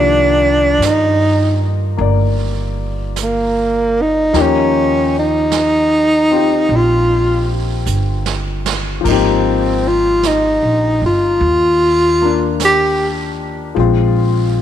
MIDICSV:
0, 0, Header, 1, 5, 480
1, 0, Start_track
1, 0, Key_signature, -3, "major"
1, 0, Tempo, 1176471
1, 1769, Time_signature, 4, 2, 24, 8
1, 5964, End_track
2, 0, Start_track
2, 0, Title_t, "Tenor saxophone"
2, 0, Program_c, 0, 66
2, 0, Note_on_c, 0, 62, 90
2, 351, Note_on_c, 0, 63, 85
2, 357, Note_off_c, 0, 62, 0
2, 670, Note_off_c, 0, 63, 0
2, 1315, Note_on_c, 0, 58, 71
2, 1638, Note_on_c, 0, 63, 89
2, 1644, Note_off_c, 0, 58, 0
2, 1799, Note_on_c, 0, 61, 81
2, 1805, Note_off_c, 0, 63, 0
2, 2115, Note_off_c, 0, 61, 0
2, 2118, Note_on_c, 0, 63, 94
2, 2758, Note_on_c, 0, 65, 88
2, 2764, Note_off_c, 0, 63, 0
2, 3076, Note_off_c, 0, 65, 0
2, 3713, Note_on_c, 0, 60, 69
2, 4030, Note_on_c, 0, 65, 93
2, 4036, Note_off_c, 0, 60, 0
2, 4190, Note_on_c, 0, 63, 78
2, 4196, Note_off_c, 0, 65, 0
2, 4510, Note_off_c, 0, 63, 0
2, 4512, Note_on_c, 0, 65, 88
2, 5120, Note_off_c, 0, 65, 0
2, 5160, Note_on_c, 0, 67, 87
2, 5350, Note_off_c, 0, 67, 0
2, 5964, End_track
3, 0, Start_track
3, 0, Title_t, "Grand piano"
3, 0, Program_c, 1, 0
3, 0, Control_c, 1, 64, 127
3, 0, Note_on_c, 1, 51, 55
3, 0, Note_on_c, 1, 53, 56
3, 0, Note_on_c, 1, 58, 48
3, 0, Note_on_c, 1, 67, 59
3, 799, Note_off_c, 1, 58, 0
3, 805, Note_on_c, 1, 58, 45
3, 821, Note_on_c, 1, 74, 51
3, 1762, Note_off_c, 1, 53, 0
3, 1765, Note_off_c, 1, 58, 0
3, 1768, Note_on_c, 1, 53, 50
3, 1769, Note_off_c, 1, 67, 0
3, 1771, Note_on_c, 1, 58, 51
3, 1773, Note_on_c, 1, 63, 52
3, 1774, Control_c, 1, 64, 0
3, 1775, Note_off_c, 1, 74, 0
3, 1775, Note_on_c, 1, 67, 64
3, 1776, Note_off_c, 1, 51, 0
3, 1841, Control_c, 1, 64, 127
3, 2575, Note_on_c, 1, 60, 43
3, 2581, Note_off_c, 1, 67, 0
3, 2581, Note_on_c, 1, 65, 42
3, 2587, Note_on_c, 1, 67, 51
3, 3669, Note_off_c, 1, 53, 0
3, 3676, Note_on_c, 1, 53, 55
3, 3683, Note_off_c, 1, 58, 0
3, 3689, Note_off_c, 1, 60, 0
3, 3690, Note_on_c, 1, 58, 56
3, 3692, Note_off_c, 1, 65, 0
3, 3694, Note_off_c, 1, 63, 0
3, 3695, Note_off_c, 1, 67, 0
3, 3697, Control_c, 1, 64, 0
3, 3706, Note_on_c, 1, 63, 52
3, 3718, Note_on_c, 1, 67, 65
3, 3757, Control_c, 1, 64, 127
3, 4978, Note_off_c, 1, 58, 0
3, 4984, Note_on_c, 1, 58, 48
3, 4998, Note_on_c, 1, 62, 49
3, 5604, Note_off_c, 1, 53, 0
3, 5610, Note_on_c, 1, 53, 51
3, 5612, Note_off_c, 1, 58, 0
3, 5613, Note_on_c, 1, 56, 45
3, 5617, Control_c, 1, 64, 0
3, 5619, Note_off_c, 1, 62, 0
3, 5619, Note_off_c, 1, 63, 0
3, 5621, Note_on_c, 1, 60, 44
3, 5625, Note_off_c, 1, 67, 0
3, 5629, Note_on_c, 1, 65, 52
3, 5678, Control_c, 1, 64, 127
3, 5964, Note_off_c, 1, 53, 0
3, 5964, Note_off_c, 1, 56, 0
3, 5964, Note_off_c, 1, 60, 0
3, 5964, Note_off_c, 1, 65, 0
3, 5964, End_track
4, 0, Start_track
4, 0, Title_t, "Upright bass"
4, 0, Program_c, 2, 32
4, 0, Note_on_c, 2, 36, 79
4, 313, Note_off_c, 2, 36, 0
4, 323, Note_on_c, 2, 43, 73
4, 789, Note_off_c, 2, 43, 0
4, 810, Note_on_c, 2, 31, 81
4, 1753, Note_off_c, 2, 31, 0
4, 1769, Note_on_c, 2, 39, 80
4, 2713, Note_off_c, 2, 39, 0
4, 2729, Note_on_c, 2, 34, 78
4, 3194, Note_off_c, 2, 34, 0
4, 3207, Note_on_c, 2, 31, 70
4, 3674, Note_off_c, 2, 31, 0
4, 3693, Note_on_c, 2, 32, 80
4, 4317, Note_off_c, 2, 32, 0
4, 4334, Note_on_c, 2, 34, 61
4, 4482, Note_off_c, 2, 34, 0
4, 4494, Note_on_c, 2, 31, 67
4, 4642, Note_off_c, 2, 31, 0
4, 4653, Note_on_c, 2, 39, 84
4, 5596, Note_off_c, 2, 39, 0
4, 5616, Note_on_c, 2, 34, 81
4, 5964, Note_off_c, 2, 34, 0
4, 5964, End_track
5, 0, Start_track
5, 0, Title_t, "Drums"
5, 335, Note_on_c, 9, 25, 36
5, 335, Note_on_c, 9, 38, 47
5, 335, Note_on_c, 9, 44, 53
5, 376, Note_off_c, 9, 38, 0
5, 376, Note_off_c, 9, 44, 0
5, 813, Note_off_c, 9, 25, 0
5, 813, Note_on_c, 9, 25, 41
5, 1290, Note_off_c, 9, 25, 0
5, 1290, Note_on_c, 9, 25, 34
5, 1290, Note_on_c, 9, 38, 44
5, 1290, Note_on_c, 9, 44, 50
5, 1330, Note_off_c, 9, 38, 0
5, 1330, Note_off_c, 9, 44, 0
5, 1771, Note_off_c, 9, 25, 0
5, 1771, Note_on_c, 9, 25, 33
5, 1771, Note_on_c, 9, 38, 33
5, 1812, Note_off_c, 9, 38, 0
5, 2250, Note_off_c, 9, 25, 0
5, 2250, Note_on_c, 9, 25, 36
5, 2250, Note_on_c, 9, 38, 49
5, 2250, Note_on_c, 9, 44, 55
5, 2291, Note_off_c, 9, 38, 0
5, 2291, Note_off_c, 9, 44, 0
5, 2730, Note_off_c, 9, 25, 0
5, 2730, Note_on_c, 9, 25, 35
5, 3208, Note_on_c, 9, 44, 48
5, 3249, Note_off_c, 9, 44, 0
5, 3369, Note_on_c, 9, 38, 58
5, 3410, Note_off_c, 9, 38, 0
5, 3532, Note_on_c, 9, 38, 83
5, 3573, Note_off_c, 9, 38, 0
5, 3692, Note_on_c, 9, 36, 72
5, 3693, Note_off_c, 9, 25, 0
5, 3693, Note_on_c, 9, 25, 42
5, 3693, Note_on_c, 9, 49, 74
5, 3733, Note_off_c, 9, 36, 0
5, 3734, Note_off_c, 9, 49, 0
5, 4175, Note_off_c, 9, 25, 0
5, 4175, Note_on_c, 9, 25, 37
5, 4175, Note_on_c, 9, 38, 46
5, 4175, Note_on_c, 9, 44, 47
5, 4216, Note_off_c, 9, 38, 0
5, 4216, Note_off_c, 9, 44, 0
5, 4657, Note_off_c, 9, 25, 0
5, 4657, Note_on_c, 9, 25, 36
5, 5140, Note_off_c, 9, 25, 0
5, 5140, Note_on_c, 9, 25, 43
5, 5140, Note_on_c, 9, 38, 49
5, 5140, Note_on_c, 9, 44, 53
5, 5180, Note_off_c, 9, 38, 0
5, 5180, Note_off_c, 9, 44, 0
5, 5620, Note_off_c, 9, 25, 0
5, 5620, Note_on_c, 9, 25, 36
5, 5964, Note_off_c, 9, 25, 0
5, 5964, End_track
0, 0, End_of_file